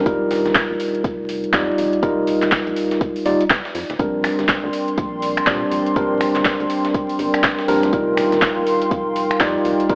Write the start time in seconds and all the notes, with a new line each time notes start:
0.06 F1 G3 D#4 F4 A#4, kick, closed hi-hat
0.31 snare, closed hi-hat, open hi-hat
0.46 D#1, snare, closed hi-hat
0.55 kick, snare, clap, closed hi-hat
0.70 A#1
0.80 closed hi-hat, open hi-hat
0.95 closed hi-hat
1.04 F1, kick, closed hi-hat
1.29 closed hi-hat, open hi-hat
1.44 closed hi-hat
1.53 F2 G3 D#4 F4 D5, kick, snare, clap, closed hi-hat
1.78 F1, closed hi-hat, open hi-hat
1.93 closed hi-hat
2.02 F1 G3 D#4 F4 A#4, kick, closed hi-hat
2.27 closed hi-hat, open hi-hat
2.42 D#1, snare, clap, closed hi-hat
2.52 kick, snare, clap, closed hi-hat
2.67 A#1, closed hi-hat
2.76 closed hi-hat, open hi-hat
2.91 snare, closed hi-hat
3.01 kick, closed hi-hat
3.16 open hi-hat
3.25 D#1 G3 D#4 F4 D5, closed hi-hat, open hi-hat
3.41 closed hi-hat
3.50 kick, snare, clap, closed hi-hat
3.65 snare
3.75 F2, open hi-hat
3.90 D#1, snare, closed hi-hat
3.99 A#1 G3 C4 D4 A#4 D5 G5 C6, kick, closed hi-hat
4.24 finger snap, snare, closed hi-hat, open hi-hat
4.39 G1, snare, closed hi-hat
4.48 kick, snare, clap, closed hi-hat
4.63 D2
4.73 closed hi-hat, open hi-hat
4.88 closed hi-hat
4.98 A#1, kick, closed hi-hat
5.22 closed hi-hat, open hi-hat
5.37 finger snap, closed hi-hat
5.47 A#2 G3 C4 D4 D5, kick, snare, clap, closed hi-hat
5.71 A#1, closed hi-hat, open hi-hat
5.86 closed hi-hat
5.96 A#1 G3 C4 D4 A#4, kick, closed hi-hat
6.21 finger snap, closed hi-hat, open hi-hat
6.35 G1, snare, clap, closed hi-hat
6.45 kick, snare, clap, closed hi-hat
6.60 D2, closed hi-hat
6.70 closed hi-hat, open hi-hat
6.85 snare, closed hi-hat
6.94 kick, closed hi-hat
7.09 open hi-hat
7.19 G1, closed hi-hat, open hi-hat
7.34 finger snap, closed hi-hat
7.43 kick, snare, clap, closed hi-hat
7.59 snare
7.68 A#1 G3 C4 D4 A#4, open hi-hat
7.83 A#1, snare, closed hi-hat
7.93 F1 G3 D#4 F4 A#4 F5 C6, kick, closed hi-hat
8.17 finger snap, snare, closed hi-hat, open hi-hat
8.32 D#1, snare, closed hi-hat
8.42 kick, snare, clap, closed hi-hat
8.57 A#1
8.67 closed hi-hat, open hi-hat
8.82 closed hi-hat
8.91 F1, kick, closed hi-hat
9.16 closed hi-hat, open hi-hat
9.31 finger snap, closed hi-hat
9.40 F2 G3 D#4 F4 D5, kick, snare, clap, closed hi-hat
9.65 F1, closed hi-hat, open hi-hat
9.80 closed hi-hat
9.89 F1 G3 D#4 F4 A#4 D6, kick, closed hi-hat